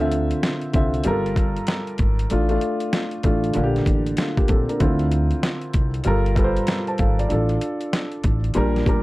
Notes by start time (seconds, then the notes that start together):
Already playing: D2
0.00 D3 C4 F4 E5
0.12 closed hi-hat
0.31 closed hi-hat
0.43 snare, closed hi-hat
0.61 closed hi-hat
0.73 C2 D3 C4 F4 E5, kick, closed hi-hat
0.94 closed hi-hat
1.04 G1 G3 F4 A4 A#4, closed hi-hat
1.26 closed hi-hat
1.36 kick, closed hi-hat
1.56 closed hi-hat
1.67 snare, closed hi-hat
1.87 closed hi-hat
1.98 G#1, kick, closed hi-hat
2.19 closed hi-hat
2.30 A1 A3 D4 F4, closed hi-hat
2.49 A3 D4 F4, closed hi-hat
2.61 closed hi-hat
2.80 closed hi-hat
2.93 snare, closed hi-hat
3.11 closed hi-hat
3.23 A1 A3 D4 F4, kick, closed hi-hat
3.44 closed hi-hat
3.54 A#1 D3 A#3 D4 F4, closed hi-hat
3.63 G4
3.76 snare, closed hi-hat
3.86 A1, kick, closed hi-hat
4.06 closed hi-hat
4.17 A3 F4, snare, closed hi-hat
4.37 A#3 G4, kick, closed hi-hat
4.48 A#1 C4 A4, kick, closed hi-hat
4.69 D4 A#4, closed hi-hat
4.79 D2 D3 C4 E4 F4, kick, closed hi-hat
4.99 closed hi-hat
5.12 closed hi-hat
5.31 closed hi-hat
5.43 snare, closed hi-hat
5.62 closed hi-hat
5.73 C2, kick, closed hi-hat
5.94 closed hi-hat
6.04 G1 G3 F4 A4 A#4, closed hi-hat
6.26 closed hi-hat
6.35 G3 F4 A4 B4, kick, closed hi-hat
6.44 C5
6.57 closed hi-hat
6.67 snare, closed hi-hat
6.87 C5 A5, closed hi-hat
6.98 G#1 A4 F5, kick, closed hi-hat
7.19 F4 D5, closed hi-hat
7.29 A1 D4 F4 A4, closed hi-hat
7.49 closed hi-hat
7.61 closed hi-hat
7.81 closed hi-hat
7.93 snare, closed hi-hat
8.12 closed hi-hat
8.24 A1, kick, closed hi-hat
8.44 closed hi-hat
8.54 A#1 A#2 G3 D4 A#4, closed hi-hat
8.76 snare, closed hi-hat
8.86 G1 A#2 G3 D4 A#4, kick, closed hi-hat